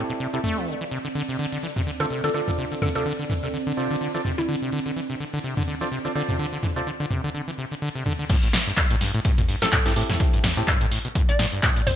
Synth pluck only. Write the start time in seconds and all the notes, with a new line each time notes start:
2.00 A4
2.24 A4
2.34 A4
2.82 A4
2.95 A4
4.38 E4
9.62 A4
11.29 D5
11.87 C5